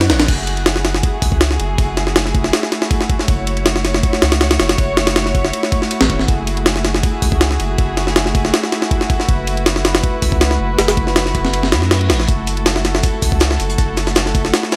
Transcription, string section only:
0, 0, Header, 1, 2, 480
1, 0, Start_track
1, 0, Key_signature, 3, "minor"
1, 0, Tempo, 375000
1, 365, Time_signature, 4, 2, 24, 8
1, 18893, End_track
2, 0, Start_track
2, 0, Title_t, "String section"
2, 0, Program_c, 0, 48
2, 0, Note_on_c, 0, 57, 79
2, 0, Note_on_c, 0, 64, 72
2, 0, Note_on_c, 0, 66, 70
2, 0, Note_on_c, 0, 73, 84
2, 312, Note_off_c, 0, 57, 0
2, 312, Note_off_c, 0, 64, 0
2, 312, Note_off_c, 0, 66, 0
2, 339, Note_off_c, 0, 73, 0
2, 363, Note_on_c, 0, 57, 80
2, 363, Note_on_c, 0, 64, 72
2, 363, Note_on_c, 0, 66, 71
2, 363, Note_on_c, 0, 68, 85
2, 4190, Note_off_c, 0, 68, 0
2, 4201, Note_on_c, 0, 73, 88
2, 8029, Note_off_c, 0, 73, 0
2, 8044, Note_on_c, 0, 68, 87
2, 11871, Note_off_c, 0, 68, 0
2, 11889, Note_on_c, 0, 71, 88
2, 15714, Note_off_c, 0, 71, 0
2, 15727, Note_on_c, 0, 69, 87
2, 18893, Note_off_c, 0, 57, 0
2, 18893, Note_off_c, 0, 64, 0
2, 18893, Note_off_c, 0, 66, 0
2, 18893, Note_off_c, 0, 69, 0
2, 18893, End_track
0, 0, End_of_file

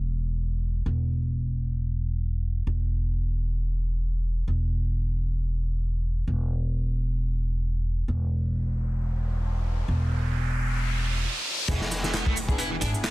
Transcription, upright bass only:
0, 0, Header, 1, 2, 480
1, 0, Start_track
1, 0, Tempo, 500000
1, 12583, End_track
2, 0, Start_track
2, 0, Title_t, "Upright bass"
2, 0, Program_c, 0, 32
2, 0, Note_on_c, 0, 28, 85
2, 809, Note_off_c, 0, 28, 0
2, 825, Note_on_c, 0, 28, 84
2, 2540, Note_off_c, 0, 28, 0
2, 2562, Note_on_c, 0, 28, 80
2, 4275, Note_off_c, 0, 28, 0
2, 4297, Note_on_c, 0, 28, 83
2, 6008, Note_off_c, 0, 28, 0
2, 6023, Note_on_c, 0, 28, 83
2, 7738, Note_off_c, 0, 28, 0
2, 7758, Note_on_c, 0, 28, 79
2, 9471, Note_off_c, 0, 28, 0
2, 9487, Note_on_c, 0, 28, 86
2, 10789, Note_off_c, 0, 28, 0
2, 11216, Note_on_c, 0, 28, 101
2, 11305, Note_off_c, 0, 28, 0
2, 12302, Note_on_c, 0, 32, 98
2, 12390, Note_off_c, 0, 32, 0
2, 12583, End_track
0, 0, End_of_file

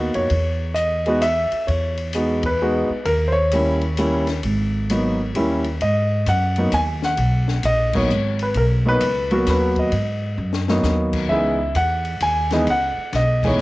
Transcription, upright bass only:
0, 0, Header, 1, 3, 480
1, 0, Start_track
1, 0, Key_signature, 5, "minor"
1, 0, Tempo, 457666
1, 325, Time_signature, 3, 2, 24, 8
1, 14278, End_track
2, 0, Start_track
2, 0, Title_t, "Upright bass"
2, 0, Program_c, 0, 32
2, 0, Note_on_c, 0, 39, 75
2, 113, Note_off_c, 0, 39, 0
2, 158, Note_on_c, 0, 41, 65
2, 311, Note_off_c, 0, 41, 0
2, 317, Note_on_c, 0, 40, 81
2, 1557, Note_off_c, 0, 40, 0
2, 1761, Note_on_c, 0, 40, 81
2, 3000, Note_off_c, 0, 40, 0
2, 3203, Note_on_c, 0, 39, 86
2, 4610, Note_off_c, 0, 39, 0
2, 4650, Note_on_c, 0, 32, 81
2, 5573, Note_off_c, 0, 32, 0
2, 5612, Note_on_c, 0, 39, 75
2, 6062, Note_off_c, 0, 39, 0
2, 6090, Note_on_c, 0, 44, 81
2, 6560, Note_off_c, 0, 44, 0
2, 6570, Note_on_c, 0, 42, 92
2, 7040, Note_off_c, 0, 42, 0
2, 7048, Note_on_c, 0, 39, 83
2, 7519, Note_off_c, 0, 39, 0
2, 7527, Note_on_c, 0, 35, 85
2, 7998, Note_off_c, 0, 35, 0
2, 8006, Note_on_c, 0, 34, 80
2, 8474, Note_off_c, 0, 34, 0
2, 8481, Note_on_c, 0, 32, 80
2, 8954, Note_off_c, 0, 32, 0
2, 8966, Note_on_c, 0, 35, 85
2, 9436, Note_off_c, 0, 35, 0
2, 9449, Note_on_c, 0, 37, 79
2, 9918, Note_off_c, 0, 37, 0
2, 9926, Note_on_c, 0, 39, 87
2, 10395, Note_off_c, 0, 39, 0
2, 10404, Note_on_c, 0, 44, 78
2, 10874, Note_off_c, 0, 44, 0
2, 10883, Note_on_c, 0, 42, 85
2, 11353, Note_off_c, 0, 42, 0
2, 11360, Note_on_c, 0, 39, 85
2, 11831, Note_off_c, 0, 39, 0
2, 11842, Note_on_c, 0, 37, 78
2, 12312, Note_off_c, 0, 37, 0
2, 12322, Note_on_c, 0, 40, 79
2, 12792, Note_off_c, 0, 40, 0
2, 12802, Note_on_c, 0, 39, 77
2, 13271, Note_off_c, 0, 39, 0
2, 13289, Note_on_c, 0, 37, 73
2, 13580, Note_off_c, 0, 37, 0
2, 13767, Note_on_c, 0, 35, 81
2, 14233, Note_off_c, 0, 35, 0
2, 14246, Note_on_c, 0, 34, 87
2, 14278, Note_off_c, 0, 34, 0
2, 14278, End_track
3, 0, Start_track
3, 0, Title_t, "Muted upright bass strokes"
3, 1593, Note_on_c, 9, 29, 35
3, 1698, Note_off_c, 9, 29, 0
3, 3037, Note_on_c, 9, 29, 41
3, 3142, Note_off_c, 9, 29, 0
3, 13598, Note_on_c, 9, 29, 37
3, 13703, Note_off_c, 9, 29, 0
3, 14278, End_track
0, 0, End_of_file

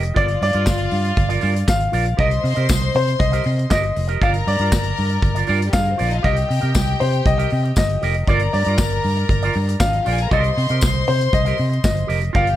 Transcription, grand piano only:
0, 0, Header, 1, 2, 480
1, 0, Start_track
1, 0, Key_signature, -3, "minor"
1, 0, Tempo, 507614
1, 154, Time_signature, 4, 2, 24, 8
1, 11879, End_track
2, 0, Start_track
2, 0, Title_t, "Grand piano"
2, 0, Program_c, 0, 0
2, 0, Note_on_c, 0, 75, 93
2, 160, Note_on_c, 0, 74, 94
2, 174, Note_off_c, 0, 75, 0
2, 390, Note_off_c, 0, 74, 0
2, 404, Note_on_c, 0, 74, 110
2, 1602, Note_on_c, 0, 77, 96
2, 1633, Note_off_c, 0, 74, 0
2, 2081, Note_on_c, 0, 75, 94
2, 2090, Note_off_c, 0, 77, 0
2, 2796, Note_on_c, 0, 72, 100
2, 2816, Note_off_c, 0, 75, 0
2, 3016, Note_off_c, 0, 72, 0
2, 3021, Note_on_c, 0, 75, 100
2, 3499, Note_off_c, 0, 75, 0
2, 3513, Note_on_c, 0, 75, 100
2, 3998, Note_on_c, 0, 77, 93
2, 4005, Note_off_c, 0, 75, 0
2, 4051, Note_off_c, 0, 77, 0
2, 4233, Note_on_c, 0, 74, 93
2, 5420, Note_on_c, 0, 77, 98
2, 5465, Note_off_c, 0, 74, 0
2, 5904, Note_on_c, 0, 75, 92
2, 5918, Note_off_c, 0, 77, 0
2, 6621, Note_on_c, 0, 72, 81
2, 6646, Note_off_c, 0, 75, 0
2, 6847, Note_off_c, 0, 72, 0
2, 6868, Note_on_c, 0, 75, 97
2, 7339, Note_off_c, 0, 75, 0
2, 7353, Note_on_c, 0, 75, 90
2, 7832, Note_on_c, 0, 74, 84
2, 7844, Note_off_c, 0, 75, 0
2, 8053, Note_off_c, 0, 74, 0
2, 8068, Note_on_c, 0, 74, 85
2, 9269, Note_on_c, 0, 77, 93
2, 9306, Note_off_c, 0, 74, 0
2, 9717, Note_off_c, 0, 77, 0
2, 9760, Note_on_c, 0, 75, 88
2, 10476, Note_on_c, 0, 72, 95
2, 10499, Note_off_c, 0, 75, 0
2, 10722, Note_off_c, 0, 72, 0
2, 10722, Note_on_c, 0, 75, 96
2, 11183, Note_off_c, 0, 75, 0
2, 11197, Note_on_c, 0, 75, 83
2, 11685, Note_on_c, 0, 77, 87
2, 11693, Note_off_c, 0, 75, 0
2, 11879, Note_off_c, 0, 77, 0
2, 11879, End_track
0, 0, End_of_file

